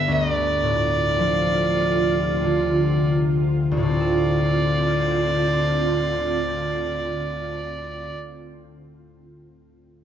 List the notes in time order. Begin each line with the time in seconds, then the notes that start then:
Already playing: G2 D3 B3 D4 E5
0.07 D2 C3 F4
0.12 D#5
0.32 D5
0.63 A2
1.19 F3
2.44 D3
3.71 D2
3.77 A2
3.82 D3 C4 F4 D5
3.89 C4
3.94 F4
4.00 A4